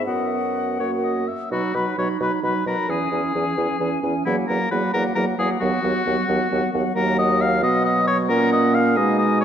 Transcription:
0.06 0.79 F#2 soft
0.06 0.81 B3 soft
0.06 0.78 F#4 soft
0.06 0.79 D#5 soft
0.06 1.25 F#5 medium
0.79 1.27 F#2 soft
0.79 1.28 A#3 soft
0.79 1.27 F#4 soft
0.79 0.91 C#5 soft
1.04 1.30 D#5 soft
1.28 1.51 E5 soft
1.51 1.62 B2 soft
1.51 1.75 F#3 soft
1.51 1.74 D#4 soft
1.51 1.77 F#4 medium
1.51 1.75 B5 soft
1.74 1.85 B2 soft
1.74 1.97 F#3 soft
1.74 1.97 D#4 soft
1.74 1.98 B4 medium
1.74 1.98 B5 soft
1.97 2.08 B2 soft
1.97 2.20 F#3 soft
1.97 2.20 D#4 soft
1.97 2.09 C#5 medium
1.97 2.20 B5 soft
2.20 2.31 B2 soft
2.20 2.42 F#3 soft
2.20 2.43 D#4 soft
2.20 2.32 B4 medium
2.20 2.43 B5 soft
2.43 2.54 B2 soft
2.43 2.66 F#3 soft
2.43 2.66 D#4 soft
2.43 2.67 B4 medium
2.43 2.66 B5 soft
2.66 2.76 B2 soft
2.66 2.89 F#3 soft
2.66 2.88 D#4 soft
2.66 2.91 A#4 medium
2.66 2.89 B5 soft
2.89 2.99 E2 soft
2.89 3.11 E3 soft
2.89 3.11 C#4 soft
2.89 4.03 G#4 medium
2.89 3.12 G#5 soft
3.11 3.22 E2 soft
3.11 3.34 E3 soft
3.11 3.34 C#4 soft
3.11 3.34 G#5 soft
3.35 3.45 E2 soft
3.35 3.56 E3 soft
3.35 3.57 C#4 soft
3.35 3.56 G#5 soft
3.57 3.68 E2 soft
3.57 3.79 E3 soft
3.57 3.80 C#4 soft
3.57 3.79 G#5 soft
3.80 3.90 E2 soft
3.80 4.02 E3 soft
3.80 4.02 C#4 soft
3.80 4.02 G#5 soft
4.03 4.13 E2 soft
4.03 4.25 E3 soft
4.03 4.25 C#4 soft
4.03 4.25 G#5 soft
4.25 4.37 E2 medium
4.25 4.47 F#3 soft
4.25 4.48 A#3 soft
4.25 4.36 E4 medium
4.25 4.47 F#5 soft
4.48 4.59 E2 soft
4.48 4.70 F#3 soft
4.48 4.71 A#3 soft
4.48 4.70 A#4 medium
4.48 4.70 F#5 soft
4.70 4.82 E2 soft
4.70 4.93 F#3 soft
4.70 4.93 A#3 soft
4.70 4.93 B4 medium
4.70 4.93 F#5 soft
4.93 5.04 E2 medium
4.93 5.15 F#3 soft
4.93 5.15 A#3 soft
4.93 5.03 A#4 medium
4.93 5.15 F#5 soft
5.15 5.26 E2 medium
5.15 5.37 F#3 soft
5.15 5.37 A#3 soft
5.15 5.26 A#4 medium
5.15 5.37 F#5 soft
5.38 5.49 E2 soft
5.38 5.60 F#3 soft
5.38 5.59 A#3 soft
5.38 5.49 G#4 medium
5.38 5.60 F#5 soft
5.60 5.71 D#2 medium
5.60 5.82 F#3 medium
5.60 5.82 B3 medium
5.60 6.71 F#4 medium
5.60 5.83 F#5 medium
5.82 5.94 D#2 medium
5.82 6.05 F#3 soft
5.82 6.05 B3 soft
5.82 6.05 F#5 soft
6.05 6.16 D#2 medium
6.05 6.28 F#3 soft
6.05 6.27 B3 soft
6.05 6.27 F#5 soft
6.28 6.39 D#2 medium
6.28 6.51 F#3 soft
6.28 6.50 B3 soft
6.28 6.50 F#5 soft
6.50 6.61 D#2 medium
6.50 6.73 F#3 soft
6.50 6.72 B3 soft
6.50 6.73 F#5 soft
6.73 6.84 D#2 medium
6.73 6.95 F#3 soft
6.73 6.94 B3 soft
6.73 6.95 F#5 medium
6.95 7.64 D#2 medium
6.95 7.59 F#3 medium
6.95 7.58 A#3 medium
6.95 7.16 A#4 medium
6.95 7.59 F#5 medium
7.18 7.43 D#5 medium
7.41 7.62 F5 medium
7.62 8.31 B2 medium
7.62 8.30 F#3 medium
7.62 8.31 B3 medium
7.62 7.84 D#5 medium
7.62 8.00 F#5 medium
7.85 8.07 D#5 medium
8.07 8.17 C#5 medium
8.29 8.98 A#2 medium
8.29 8.98 A#3 medium
8.29 8.97 C#4 medium
8.29 8.51 A#4 medium
8.29 8.97 F#5 medium
8.52 8.76 D#5 medium
8.74 8.98 F5 medium
8.95 9.45 B2 medium
8.95 9.45 G#3 medium
8.95 9.45 D#4 medium
8.95 9.18 D#5 medium
8.95 9.45 G#5 medium
9.19 9.40 D#5 medium
9.41 9.45 C#5 medium

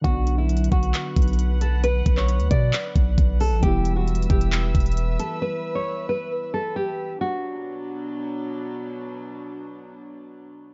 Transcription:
0.01 0.69 B1 loud
0.01 3.57 D3 medium
0.01 3.58 F#3 medium
0.01 0.36 F#4 loud
0.01 3.59 B4 medium
0.01 3.59 F#5 medium
0.01 kick loud
0.01 closed hi-hat medium
0.07 3.60 B3 medium
0.07 3.61 D4 medium
0.27 closed hi-hat medium
0.38 0.70 E4 medium
0.49 closed hi-hat medium
0.57 closed hi-hat medium
0.64 closed hi-hat medium
0.72 0.93 B1 loud
0.72 1.57 F#4 medium
0.72 kick medium
0.72 closed hi-hat medium
0.83 closed hi-hat medium
0.94 clap loud
0.94 closed hi-hat medium
1.16 2.02 B1 loud
1.16 kick medium
1.16 closed hi-hat medium
1.22 closed hi-hat medium
1.28 closed hi-hat medium
1.33 closed hi-hat soft
1.39 closed hi-hat medium
1.61 1.81 A4 medium
1.61 closed hi-hat medium
1.84 2.15 B4 loud
1.84 closed hi-hat medium
2.06 2.41 B1 loud
2.06 kick loud
2.06 closed hi-hat medium
2.17 2.49 C#5 medium
2.17 clap medium
2.29 closed hi-hat medium
2.40 2.50 D2 loud
2.40 closed hi-hat soft
2.51 2.72 B2 loud
2.51 3.36 D5 medium
2.51 kick loud
2.51 closed hi-hat medium
2.73 clap loud
2.73 closed hi-hat medium
2.96 3.17 B1 loud
2.96 kick loud
2.96 closed hi-hat medium
3.18 3.53 B1 loud
3.18 kick loud
3.18 closed hi-hat medium
3.40 3.61 A4 medium
3.40 open hi-hat medium
3.52 3.62 A1 loud
3.59 4.27 E1 loud
3.59 7.15 E3 medium
3.59 7.16 G3 medium
3.59 3.94 G4 loud
3.59 7.17 B4 medium
3.59 7.17 E5 medium
3.59 7.17 E6 medium
3.59 kick loud
3.59 closed hi-hat medium
3.64 7.18 B3 medium
3.64 7.19 E4 medium
3.85 closed hi-hat medium
3.96 4.28 F#4 medium
4.08 closed hi-hat medium
4.15 closed hi-hat medium
4.22 closed hi-hat medium
4.30 4.73 E1 loud
4.30 5.15 G4 medium
4.30 kick loud
4.30 closed hi-hat medium
4.41 closed hi-hat medium
4.52 clap loud
4.52 closed hi-hat medium
4.75 5.18 E1 loud
4.75 kick loud
4.75 closed hi-hat medium
4.80 closed hi-hat medium
4.86 closed hi-hat soft
4.92 closed hi-hat soft
4.97 closed hi-hat medium
5.20 5.40 A4 medium
5.20 closed hi-hat medium
5.42 5.73 B4 loud
5.75 6.07 C#5 medium
6.09 6.29 B4 medium
6.54 6.74 A4 medium
6.76 7.18 G4 medium
7.21 10.74 B2 medium
7.21 10.74 F#3 medium
7.21 10.74 D4 medium
7.21 8.51 F#4 medium

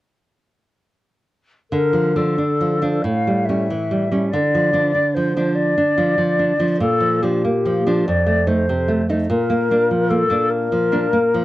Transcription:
1.71 3.00 D3 soft
1.71 2.18 A#4 soft
1.93 2.15 F3 soft
2.16 2.36 F3 soft
2.16 2.36 D4 soft
2.16 3.04 A4 soft
2.38 2.73 D4 soft
2.61 2.81 F3 soft
2.82 3.01 F3 soft
2.82 3.02 D4 soft
3.03 4.28 A2 soft
3.03 3.47 F5 soft
3.28 3.48 G3 soft
3.45 3.67 G3 soft
3.45 4.29 E5 soft
3.50 3.67 C#4 soft
3.71 4.03 E3 soft
3.91 4.10 G3 soft
4.12 4.30 G3 soft
4.12 4.30 C#4 soft
4.30 6.78 D3 soft
4.30 5.16 D5 soft
4.55 4.72 F3 soft
4.73 4.92 F3 soft
4.73 4.92 D4 soft
4.95 5.28 D4 soft
5.15 5.35 F3 soft
5.15 5.57 C5 soft
5.37 5.74 F3 soft
5.37 5.74 D4 soft
5.55 6.80 D5 soft
5.78 5.97 D4 soft
5.98 6.17 F3 soft
5.98 6.17 D4 soft
6.18 6.51 F3 soft
6.39 6.59 D4 soft
6.60 6.79 F3 soft
6.60 6.79 D4 soft
6.81 8.02 A#2 soft
6.81 7.24 A4 soft
7.01 7.22 F3 soft
7.23 7.41 F3 soft
7.23 7.41 D4 soft
7.23 8.08 G4 soft
7.44 7.77 A#3 soft
7.65 7.85 F3 soft
7.87 8.04 F3 soft
7.87 8.05 D4 soft
8.06 9.25 F2 soft
8.06 8.49 D5 soft
8.27 8.46 A3 soft
8.47 8.65 A3 soft
8.47 8.65 D#4 soft
8.47 9.01 C5 soft
8.69 9.00 C3 soft
8.88 9.08 A3 soft
9.09 9.27 A3 soft
9.09 9.27 D#4 soft
9.28 11.45 A#2 soft
9.28 10.11 A#4 soft
9.50 9.70 A#3 soft
9.71 9.88 A#3 soft
9.71 9.89 D4 soft
9.91 10.23 F3 soft
10.10 10.29 A#3 soft
10.10 10.52 A4 soft
10.30 10.67 A#3 soft
10.30 10.68 D4 soft
10.50 11.45 A#4 medium
10.72 11.05 F3 soft
10.92 11.11 A#3 soft
10.92 11.11 D4 soft
11.13 11.45 A#3 soft
11.34 11.45 F3 soft

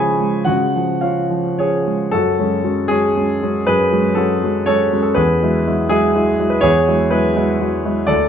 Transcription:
0.00 0.45 C#3 medium
0.00 0.11 F3 soft
0.00 0.20 G#3 soft
0.00 0.52 C#4 soft
0.00 0.53 G#4 medium
0.00 0.52 C#5 medium
0.00 0.52 G#5 medium
0.00 0.52 B5 medium
0.00 0.52 C#6 medium
0.20 0.65 G#3 soft
0.45 2.07 C#3 soft
0.45 0.99 F#4 medium
0.45 1.02 F#5 medium
0.76 1.20 F3 soft
1.01 1.48 C#4 soft
1.01 1.82 F4 soft
1.01 1.85 F5 medium
1.30 1.75 F3 soft
1.59 2.03 C#4 soft
1.59 2.09 G#4 medium
1.59 2.12 C#5 medium
1.87 2.13 G#3 soft
2.12 2.38 F#2 soft
2.12 2.85 F#4 medium
2.12 2.88 A4 medium
2.39 2.61 F#3 soft
2.39 2.61 G#3 soft
2.39 2.61 C#4 soft
2.64 2.87 F#3 soft
2.64 2.87 G#3 soft
2.64 2.87 C#4 soft
2.88 3.13 F#3 soft
2.88 3.13 G#3 soft
2.88 3.15 C#4 medium
2.88 3.66 G#4 medium
3.16 3.38 F#3 soft
3.16 3.39 G#3 soft
3.16 3.39 C#4 soft
3.42 3.65 F#3 soft
3.42 3.65 G#3 soft
3.42 3.65 C#4 soft
3.67 3.92 F#2 medium
3.67 4.15 G#4 medium
3.67 4.18 B4 medium
3.92 4.15 F#3 soft
3.92 4.15 G#3 soft
3.92 4.16 C#4 soft
4.15 4.40 F#3 soft
4.15 4.40 G#3 soft
4.15 4.40 C#4 soft
4.15 4.63 F#4 medium
4.15 4.66 A4 medium
4.43 4.65 F#3 soft
4.43 4.66 G#3 soft
4.43 4.65 C#4 soft
4.66 4.89 F#3 soft
4.66 4.90 G#3 soft
4.66 4.90 C#4 soft
4.66 5.01 A4 medium
4.66 5.04 C#5 loud
4.92 5.15 F#3 soft
4.92 5.15 G#3 soft
4.92 5.15 C#4 soft
5.02 5.16 A4 medium
5.15 5.41 E2 medium
5.15 5.86 G#4 medium
5.15 5.90 B4 medium
5.42 5.64 F#3 soft
5.42 5.65 G#3 soft
5.42 5.65 E4 medium
5.66 5.88 F#3 soft
5.66 5.89 G#3 soft
5.66 5.89 E4 soft
5.89 6.12 F#3 soft
5.89 6.13 G#3 soft
5.89 6.14 E4 medium
5.89 6.52 G#4 medium
6.15 6.37 F#3 soft
6.15 6.38 G#3 soft
6.15 6.38 E4 medium
6.39 6.62 F#3 soft
6.39 6.62 G#3 soft
6.39 6.62 E4 soft
6.50 6.63 B4 medium
6.61 6.87 E2 medium
6.61 7.09 G#4 medium
6.61 7.11 C#5 loud
6.88 7.10 F#3 soft
6.88 7.10 G#3 soft
6.88 7.10 E4 medium
7.11 7.34 F#3 soft
7.11 7.34 G#3 soft
7.11 7.35 E4 soft
7.11 7.58 G#4 medium
7.11 7.61 B4 medium
7.36 7.59 F#3 soft
7.36 7.59 G#3 soft
7.36 7.59 E4 medium
7.60 7.83 F#3 medium
7.60 7.83 G#3 soft
7.60 7.83 E4 medium
7.85 8.07 F#3 soft
7.85 8.07 G#3 soft
7.85 8.07 E4 soft
8.07 8.29 D2 medium
8.07 8.29 A4 medium
8.07 8.29 D5 medium

